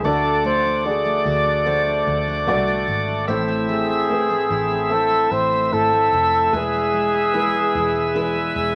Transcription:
Already playing: A3 C4
0.03 D2 D3 A3 F#4 A4 D5 F#5 D6
0.24 D4
0.45 A3 C5
0.65 D4
0.84 A3 F#4 G#4 D5
1.05 A3
1.25 D2 F#4
1.46 D4
1.65 D3 A3 F#4 C5
1.87 D4
2.07 D2 A3
2.27 D4
2.47 C2 A3 F#4 D5
2.68 A3
2.88 G#1 F#4
3.08 D4
3.27 A1 A2 A3 C4 E4 C5 E5 E6
3.48 C4
3.69 A3 G#4
3.89 C4
4.09 A3 E4 B4
4.30 A3
4.50 A1 E4
4.70 C4
4.90 A3 E4 A4 C5
5.11 C4
5.31 A1 A3 C5
5.52 C4
5.71 G#1 A3 E4 A4 C5
5.93 A3
6.12 F1 E4
6.33 C4
6.52 E1 E2 E3 G#3 E4 G#4 B4 G#5
6.74 B3
6.94 G#3
7.14 B3
7.34 G#3 E4 B4
7.55 G#3
7.75 E1 E4
7.95 B3
8.15 E2 G#3 E4 B4
8.35 B3
8.56 E1 G#3

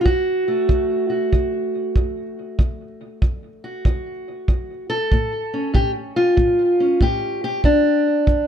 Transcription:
0.01 F4
0.05 D2 F#4, kick
0.48 A3
0.69 D2, kick
1.10 F#4
1.33 D2, kick
1.96 D2, kick
2.59 D2, kick
3.22 D2, kick
3.64 F#4
3.85 D2, kick
4.48 D2, kick
4.90 A4
5.12 A2, kick
5.54 C#4
5.74 A2 G4, kick
6.16 F4
6.37 A2, kick
6.80 C#4
7.01 A2 G4, kick
7.44 G4
7.64 G2 D4, kick
8.27 G2, kick

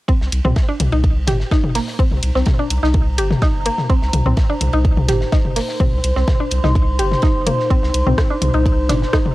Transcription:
0.08 C4 D#4, kick, ride
0.18 C2 C5, snare
0.32 C2, closed hi-hat, ride
0.45 C2 C4, mid tom, high tom
0.56 kick, snare, ride
0.69 D4
0.80 C2, closed hi-hat, high tom, ride
0.92 C2 D#4, ride
1.04 kick, ride
1.27 G1 G4 A#5, snare, closed hi-hat, mid tom, high tom, ride
1.40 snare
1.51 D#4, kick, snare, ride
1.64 G1, high tom
1.75 A#3, snare, closed hi-hat, open hi-hat
1.88 snare
1.99 C4, kick, ride
2.11 C2, high tom
2.23 C2, closed hi-hat, ride
2.35 C2 C4, snare
2.46 kick, snare, high tom, ride
2.59 D4
2.70 C2, closed hi-hat, ride
2.83 C2 D#4, snare
2.94 kick, high tom, ride
3.18 G1 G4, closed hi-hat, ride
3.31 snare, high tom
3.42 D#4, kick, snare, ride
3.54 G1
3.65 A#3, closed hi-hat, ride
3.78 snare, high tom
3.89 C4, kick, ride
4.02 C2, snare
4.13 C2, closed hi-hat, high tom, ride
4.26 C2 C4, mid tom
4.37 kick, snare, ride
4.50 D4
4.61 C2, closed hi-hat, high tom, ride
4.73 C2 D#4, ride
4.85 kick, ride
4.97 high tom
5.08 G1 G4 C6, snare, closed hi-hat, mid tom, ride
5.21 snare
5.32 D#4, kick, snare, ride
5.45 G1, high tom
5.56 A#3, snare, closed hi-hat, open hi-hat
5.68 snare
5.80 C4, kick, high tom, ride
5.93 C2
6.04 C2, closed hi-hat, ride
6.16 C2 C4, snare
6.28 kick, snare, high tom, ride
6.40 D4
6.51 C2, closed hi-hat, ride
6.64 C2 D#4, snare, high tom
6.75 kick, ride
6.99 G1 G4, closed hi-hat, ride
7.12 snare, high tom
7.22 D#4, kick, snare, ride
7.35 G1
7.47 A#3, closed hi-hat, high tom, ride
7.60 snare
7.70 C4, kick, ride
7.83 C2, snare
7.94 C2, closed hi-hat, ride
8.07 C2 C4, mid tom, high tom
8.18 kick, cross-stick, snare, ride
8.30 D4
8.42 C2, closed hi-hat, high tom, ride
8.54 C2 D#4, ride
8.66 kick, ride
8.89 G1 D4 A#5, snare, closed hi-hat, mid tom, high tom, ride
9.02 snare
9.13 D#4, kick, cross-stick, snare, ride
9.26 G1, high tom

